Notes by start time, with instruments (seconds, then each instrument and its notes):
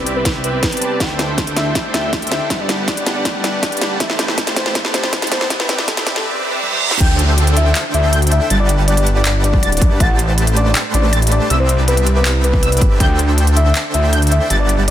Already playing: detuned saw bass C2, string section C3 G3 E4 G4 B4, supersaw synth C4 G4 B4 D5 E5, riser
0.07 closed hi-hat
0.16 soft synth lead B4
0.25 kick, snare, closed hi-hat
0.44 soft synth lead B4, closed hi-hat
0.63 kick, snare, closed hi-hat
0.72 supersaw synth C4 G4 B4 D5 A5, closed hi-hat
0.77 closed hi-hat
0.82 closed hi-hat
1.00 detuned saw bass D2, string section D3 A3 C4 G4, supersaw synth D4 A4 C5 E5 G5, soft synth lead G5, kick, snare, closed hi-hat
1.19 snare, closed hi-hat
1.38 kick, snare, closed hi-hat
1.47 closed hi-hat
1.57 soft synth lead E5, snare, closed hi-hat
1.75 kick, snare, closed hi-hat
1.94 detuned saw bass D2, soft synth lead E5, snare, closed hi-hat
2.13 supersaw synth D4 A4 C5 E5 G5, kick, snare, closed hi-hat
2.22 closed hi-hat
2.27 closed hi-hat
2.32 soft synth lead E5, snare, closed hi-hat
2.50 detuned saw bass G1, string section G3 B3 F#5, supersaw synth G3 G4 B4 F#5 A5, kick, snare, closed hi-hat
2.60 soft synth lead D5
2.69 snare, closed hi-hat
2.79 detuned saw bass G1
2.88 soft synth lead D5, kick, snare, closed hi-hat
2.97 closed hi-hat
3.06 snare, closed hi-hat
3.16 soft synth lead D5
3.25 kick, snare, closed hi-hat
3.44 soft synth lead D5, snare, closed hi-hat
3.63 supersaw synth G3 G4 B4 F#5 A5, kick, snare, closed hi-hat
3.72 closed hi-hat
3.77 closed hi-hat
3.81 snare, closed hi-hat
4.00 detuned saw bass A1, string section C3 G3 A3 E4, supersaw synth A3 G4 B4 C5 A5, soft synth lead E5, kick, snare, closed hi-hat
4.10 snare
4.19 snare, closed hi-hat
4.28 snare
4.38 kick, snare, closed hi-hat
4.47 snare, closed hi-hat
4.56 soft synth lead C5, snare, closed hi-hat
4.66 snare
4.75 kick, snare, closed hi-hat
4.85 snare
4.94 detuned saw bass A1, soft synth lead C5, snare, closed hi-hat
5.04 snare
5.13 supersaw synth A3 G4 B4 C5 A5, kick, snare, closed hi-hat
5.22 snare, closed hi-hat
5.27 closed hi-hat
5.32 soft synth lead C5, snare, closed hi-hat
5.41 snare
5.50 detuned saw bass C2, supersaw synth C4 G4 B4 D5 E5, string section B4, kick, snare, closed hi-hat
5.60 soft synth lead B4, snare
5.69 snare, closed hi-hat
5.79 detuned saw bass C2, snare
5.88 soft synth lead A4, kick, snare, closed hi-hat
5.97 snare, closed hi-hat
6.07 snare, closed hi-hat
6.16 soft synth lead A4, snare
6.25 reverse cymbal
6.63 supersaw synth C4 G4 B4 D5 E5, high tom
6.72 high tom
6.91 snare
7.00 detuned saw bass D2, supersaw synth D4 A4 C5 E5 G5, soft synth lead G5, synth pluck G6, kick, closed hi-hat, crash, downlifter
7.19 closed hi-hat
7.38 closed hi-hat
7.47 closed hi-hat
7.57 soft synth lead E5, closed hi-hat
7.75 clap, closed hi-hat
7.94 detuned saw bass D2, soft synth lead E5, closed hi-hat
8.13 supersaw synth D4 A4 C5 E5 G5, synth pluck G6, closed hi-hat
8.22 closed hi-hat
8.27 closed hi-hat
8.32 soft synth lead E5, closed hi-hat
8.50 detuned saw bass G1, supersaw synth G3 G4 B4 F#5 A5, synth pluck A6, closed hi-hat
8.60 soft synth lead D5
8.69 closed hi-hat
8.79 detuned saw bass G1
8.88 soft synth lead D5, closed hi-hat
8.97 closed hi-hat
9.07 closed hi-hat
9.16 soft synth lead D5
9.25 clap, closed hi-hat
9.44 soft synth lead D5, closed hi-hat
9.54 kick
9.63 detuned saw bass D1, supersaw synth G3 G4 B4 F#5 A5, synth pluck A6, closed hi-hat
9.72 closed hi-hat
9.77 closed hi-hat
9.82 detuned saw bass G2, kick, closed hi-hat
10.00 detuned saw bass A1, supersaw synth A3 G4 B4 C5 A5, soft synth lead F#5, synth pluck A6, kick, closed hi-hat
10.19 closed hi-hat
10.38 closed hi-hat
10.47 closed hi-hat
10.57 soft synth lead D5, closed hi-hat
10.75 clap, closed hi-hat
10.94 detuned saw bass A1, soft synth lead D5, closed hi-hat
11.13 supersaw synth A3 G4 B4 C5 A5, synth pluck A6, closed hi-hat
11.22 closed hi-hat
11.27 closed hi-hat
11.32 soft synth lead D5, closed hi-hat
11.50 detuned saw bass C2, supersaw synth C4 G4 B4 D5 E5, synth pluck E6, closed hi-hat
11.60 soft synth lead C5
11.69 closed hi-hat
11.79 detuned saw bass C2
11.88 soft synth lead B4, closed hi-hat
11.97 closed hi-hat
12.07 closed hi-hat
12.16 soft synth lead B4
12.25 clap, closed hi-hat
12.44 soft synth lead B4, closed hi-hat
12.54 kick
12.63 supersaw synth C4 G4 B4 D5 E5, synth pluck E6, closed hi-hat
12.72 closed hi-hat
12.77 closed hi-hat
12.82 detuned saw bass G1, kick, closed hi-hat
12.91 detuned saw bass G1
13.00 detuned saw bass D2, supersaw synth D4 A4 C5 E5 G5, soft synth lead G5, synth pluck G6, kick, closed hi-hat
13.19 closed hi-hat
13.38 closed hi-hat
13.47 closed hi-hat
13.57 soft synth lead E5, closed hi-hat
13.75 clap, closed hi-hat
13.94 detuned saw bass D2, soft synth lead E5, closed hi-hat
14.13 supersaw synth D4 A4 C5 E5 G5, synth pluck G6, closed hi-hat
14.22 closed hi-hat
14.27 closed hi-hat
14.32 soft synth lead E5, closed hi-hat
14.50 detuned saw bass G1, supersaw synth G3 G4 B4 F#5 A5, synth pluck A6, closed hi-hat
14.60 soft synth lead D5
14.69 closed hi-hat
14.79 detuned saw bass G1